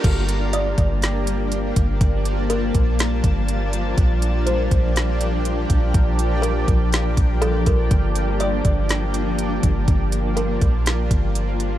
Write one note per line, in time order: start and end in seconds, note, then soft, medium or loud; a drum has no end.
0.04 0.75 G1 loud
0.04 11.78 F3 medium
0.04 11.78 G3 medium
0.04 3.94 A#3 medium
0.04 11.78 D4 medium
0.04 1.99 G4 medium
0.04 kick loud
0.04 closed hi-hat medium
0.04 crash loud
0.29 closed hi-hat medium
0.53 1.97 D5 medium
0.53 closed hi-hat medium
0.78 1.72 G1 loud
0.78 kick medium
0.78 closed hi-hat medium
1.02 snare loud
1.02 closed hi-hat medium
1.27 closed hi-hat medium
1.52 closed hi-hat medium
1.76 2.00 G1 loud
1.76 kick medium
1.76 closed hi-hat medium
2.01 2.72 G1 loud
2.01 3.96 A5 medium
2.01 kick loud
2.01 closed hi-hat medium
2.25 closed hi-hat medium
2.50 3.94 A#4 medium
2.50 closed hi-hat medium
2.75 3.22 A#1 loud
2.75 kick medium
2.75 closed hi-hat medium
2.99 snare loud
2.99 closed hi-hat medium
3.24 3.95 G1 loud
3.24 kick loud
3.24 closed hi-hat medium
3.48 closed hi-hat medium
3.73 closed hi-hat medium
3.98 4.68 A#1 loud
3.98 11.78 A#3 medium
3.98 9.84 G4 medium
3.98 kick loud
3.98 closed hi-hat medium
4.22 closed hi-hat medium
4.47 5.90 C5 medium
4.47 closed hi-hat medium
4.71 5.66 A#1 loud
4.71 kick medium
4.71 closed hi-hat medium
4.96 snare loud
4.96 closed hi-hat medium
5.21 closed hi-hat medium
5.45 closed hi-hat medium
5.70 5.93 A#1 loud
5.70 kick medium
5.70 closed hi-hat medium
5.94 6.65 A#1 loud
5.94 kick loud
5.94 closed hi-hat medium
6.19 closed hi-hat medium
6.42 7.37 A#4 medium
6.42 closed hi-hat medium
6.68 7.15 A#1 loud
6.68 kick medium
6.68 closed hi-hat medium
6.93 snare loud
6.93 closed hi-hat medium
7.17 7.65 A#1 loud
7.17 kick loud
7.17 closed hi-hat medium
7.42 7.65 A4 medium
7.42 closed hi-hat medium
7.66 7.90 A#1 loud
7.66 7.90 A#4 medium
7.66 kick medium
7.66 closed hi-hat medium
7.91 8.62 G1 loud
7.91 kick loud
7.91 closed hi-hat medium
8.16 closed hi-hat medium
8.40 9.84 D5 medium
8.40 closed hi-hat medium
8.65 9.59 G1 loud
8.65 kick medium
8.65 closed hi-hat medium
8.89 snare loud
8.89 closed hi-hat medium
9.14 closed hi-hat medium
9.39 closed hi-hat medium
9.63 9.87 G1 loud
9.63 kick medium
9.63 closed hi-hat medium
9.88 10.59 G1 loud
9.88 11.78 F4 medium
9.88 kick loud
9.88 closed hi-hat medium
10.12 closed hi-hat medium
10.37 11.78 A#4 medium
10.37 closed hi-hat medium
10.61 11.09 A#1 loud
10.61 kick medium
10.61 closed hi-hat medium
10.86 snare loud
10.86 closed hi-hat medium
11.11 11.78 G1 loud
11.11 kick loud
11.11 closed hi-hat medium
11.35 closed hi-hat medium
11.60 closed hi-hat medium